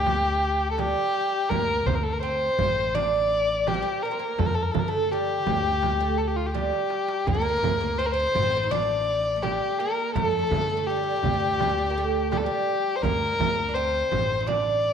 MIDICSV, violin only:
0, 0, Header, 1, 2, 480
1, 0, Start_track
1, 0, Tempo, 721154
1, 1000, Time_signature, 4, 2, 24, 8
1, 9939, End_track
2, 0, Start_track
2, 0, Title_t, "Violin"
2, 0, Program_c, 0, 40
2, 0, Note_on_c, 0, 67, 89
2, 473, Note_off_c, 0, 67, 0
2, 477, Note_on_c, 0, 69, 61
2, 532, Note_on_c, 0, 67, 87
2, 542, Note_off_c, 0, 69, 0
2, 998, Note_on_c, 0, 70, 87
2, 1008, Note_off_c, 0, 67, 0
2, 1241, Note_on_c, 0, 72, 67
2, 1251, Note_off_c, 0, 70, 0
2, 1297, Note_on_c, 0, 70, 66
2, 1307, Note_off_c, 0, 72, 0
2, 1351, Note_on_c, 0, 69, 74
2, 1361, Note_off_c, 0, 70, 0
2, 1417, Note_on_c, 0, 70, 67
2, 1427, Note_off_c, 0, 69, 0
2, 1475, Note_off_c, 0, 70, 0
2, 1479, Note_on_c, 0, 72, 88
2, 1961, Note_on_c, 0, 74, 86
2, 1971, Note_off_c, 0, 72, 0
2, 2448, Note_on_c, 0, 67, 77
2, 2458, Note_off_c, 0, 74, 0
2, 2680, Note_on_c, 0, 70, 66
2, 2689, Note_off_c, 0, 67, 0
2, 2922, Note_on_c, 0, 69, 71
2, 2932, Note_off_c, 0, 70, 0
2, 2971, Note_on_c, 0, 70, 75
2, 2981, Note_off_c, 0, 69, 0
2, 3027, Note_on_c, 0, 69, 70
2, 3037, Note_off_c, 0, 70, 0
2, 3079, Note_on_c, 0, 70, 60
2, 3089, Note_off_c, 0, 69, 0
2, 3138, Note_on_c, 0, 69, 62
2, 3148, Note_off_c, 0, 70, 0
2, 3193, Note_on_c, 0, 70, 59
2, 3203, Note_off_c, 0, 69, 0
2, 3252, Note_on_c, 0, 69, 83
2, 3262, Note_off_c, 0, 70, 0
2, 3405, Note_on_c, 0, 67, 82
2, 3415, Note_off_c, 0, 69, 0
2, 4113, Note_on_c, 0, 69, 55
2, 4123, Note_off_c, 0, 67, 0
2, 4177, Note_on_c, 0, 67, 59
2, 4187, Note_off_c, 0, 69, 0
2, 4235, Note_on_c, 0, 65, 60
2, 4245, Note_off_c, 0, 67, 0
2, 4301, Note_on_c, 0, 67, 62
2, 4311, Note_off_c, 0, 65, 0
2, 4354, Note_off_c, 0, 67, 0
2, 4358, Note_on_c, 0, 67, 69
2, 4840, Note_on_c, 0, 70, 87
2, 4850, Note_off_c, 0, 67, 0
2, 5314, Note_on_c, 0, 72, 78
2, 5324, Note_off_c, 0, 70, 0
2, 5363, Note_on_c, 0, 70, 66
2, 5373, Note_off_c, 0, 72, 0
2, 5406, Note_on_c, 0, 72, 93
2, 5416, Note_off_c, 0, 70, 0
2, 5801, Note_on_c, 0, 74, 79
2, 5811, Note_off_c, 0, 72, 0
2, 6276, Note_on_c, 0, 67, 68
2, 6286, Note_off_c, 0, 74, 0
2, 6516, Note_on_c, 0, 70, 70
2, 6526, Note_off_c, 0, 67, 0
2, 6749, Note_off_c, 0, 70, 0
2, 6753, Note_on_c, 0, 69, 88
2, 7230, Note_on_c, 0, 67, 86
2, 7240, Note_off_c, 0, 69, 0
2, 8193, Note_off_c, 0, 67, 0
2, 8197, Note_on_c, 0, 67, 69
2, 8237, Note_on_c, 0, 69, 58
2, 8247, Note_off_c, 0, 67, 0
2, 8284, Note_on_c, 0, 67, 74
2, 8294, Note_off_c, 0, 69, 0
2, 8626, Note_on_c, 0, 72, 60
2, 8636, Note_off_c, 0, 67, 0
2, 8667, Note_on_c, 0, 70, 91
2, 8677, Note_off_c, 0, 72, 0
2, 9148, Note_on_c, 0, 72, 76
2, 9158, Note_off_c, 0, 70, 0
2, 9627, Note_on_c, 0, 74, 83
2, 9637, Note_off_c, 0, 72, 0
2, 9939, Note_off_c, 0, 74, 0
2, 9939, End_track
0, 0, End_of_file